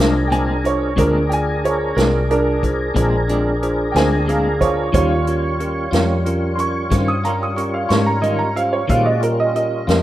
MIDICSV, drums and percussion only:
0, 0, Header, 1, 2, 480
1, 0, Start_track
1, 0, Tempo, 660066
1, 709, Time_signature, 12, 3, 24, 8
1, 7290, End_track
2, 0, Start_track
2, 0, Title_t, "Drums"
2, 0, Note_on_c, 9, 38, 101
2, 72, Note_off_c, 9, 38, 0
2, 231, Note_on_c, 9, 42, 53
2, 304, Note_off_c, 9, 42, 0
2, 473, Note_on_c, 9, 42, 53
2, 546, Note_off_c, 9, 42, 0
2, 712, Note_on_c, 9, 36, 98
2, 714, Note_on_c, 9, 42, 71
2, 785, Note_off_c, 9, 36, 0
2, 787, Note_off_c, 9, 42, 0
2, 957, Note_on_c, 9, 42, 54
2, 1030, Note_off_c, 9, 42, 0
2, 1201, Note_on_c, 9, 42, 50
2, 1274, Note_off_c, 9, 42, 0
2, 1436, Note_on_c, 9, 42, 70
2, 1444, Note_on_c, 9, 38, 93
2, 1509, Note_off_c, 9, 42, 0
2, 1516, Note_off_c, 9, 38, 0
2, 1677, Note_on_c, 9, 42, 51
2, 1750, Note_off_c, 9, 42, 0
2, 1914, Note_on_c, 9, 36, 67
2, 1918, Note_on_c, 9, 42, 51
2, 1986, Note_off_c, 9, 36, 0
2, 1990, Note_off_c, 9, 42, 0
2, 2153, Note_on_c, 9, 36, 98
2, 2155, Note_on_c, 9, 42, 75
2, 2225, Note_off_c, 9, 36, 0
2, 2228, Note_off_c, 9, 42, 0
2, 2394, Note_on_c, 9, 42, 58
2, 2467, Note_off_c, 9, 42, 0
2, 2638, Note_on_c, 9, 42, 54
2, 2711, Note_off_c, 9, 42, 0
2, 2877, Note_on_c, 9, 42, 73
2, 2884, Note_on_c, 9, 38, 94
2, 2950, Note_off_c, 9, 42, 0
2, 2957, Note_off_c, 9, 38, 0
2, 3119, Note_on_c, 9, 42, 55
2, 3191, Note_off_c, 9, 42, 0
2, 3353, Note_on_c, 9, 36, 69
2, 3356, Note_on_c, 9, 42, 57
2, 3426, Note_off_c, 9, 36, 0
2, 3429, Note_off_c, 9, 42, 0
2, 3592, Note_on_c, 9, 36, 103
2, 3594, Note_on_c, 9, 42, 76
2, 3665, Note_off_c, 9, 36, 0
2, 3666, Note_off_c, 9, 42, 0
2, 3834, Note_on_c, 9, 42, 58
2, 3907, Note_off_c, 9, 42, 0
2, 4074, Note_on_c, 9, 42, 57
2, 4147, Note_off_c, 9, 42, 0
2, 4313, Note_on_c, 9, 42, 76
2, 4320, Note_on_c, 9, 38, 95
2, 4385, Note_off_c, 9, 42, 0
2, 4393, Note_off_c, 9, 38, 0
2, 4553, Note_on_c, 9, 42, 59
2, 4626, Note_off_c, 9, 42, 0
2, 4790, Note_on_c, 9, 42, 57
2, 4863, Note_off_c, 9, 42, 0
2, 5027, Note_on_c, 9, 42, 80
2, 5030, Note_on_c, 9, 36, 101
2, 5034, Note_on_c, 9, 38, 30
2, 5100, Note_off_c, 9, 42, 0
2, 5102, Note_off_c, 9, 36, 0
2, 5107, Note_off_c, 9, 38, 0
2, 5270, Note_on_c, 9, 42, 55
2, 5343, Note_off_c, 9, 42, 0
2, 5510, Note_on_c, 9, 42, 56
2, 5583, Note_off_c, 9, 42, 0
2, 5746, Note_on_c, 9, 42, 69
2, 5754, Note_on_c, 9, 38, 102
2, 5819, Note_off_c, 9, 42, 0
2, 5826, Note_off_c, 9, 38, 0
2, 5988, Note_on_c, 9, 42, 49
2, 6061, Note_off_c, 9, 42, 0
2, 6231, Note_on_c, 9, 42, 53
2, 6304, Note_off_c, 9, 42, 0
2, 6468, Note_on_c, 9, 36, 96
2, 6470, Note_on_c, 9, 42, 72
2, 6540, Note_off_c, 9, 36, 0
2, 6542, Note_off_c, 9, 42, 0
2, 6709, Note_on_c, 9, 42, 54
2, 6782, Note_off_c, 9, 42, 0
2, 6950, Note_on_c, 9, 42, 51
2, 7023, Note_off_c, 9, 42, 0
2, 7189, Note_on_c, 9, 42, 71
2, 7196, Note_on_c, 9, 38, 96
2, 7261, Note_off_c, 9, 42, 0
2, 7269, Note_off_c, 9, 38, 0
2, 7290, End_track
0, 0, End_of_file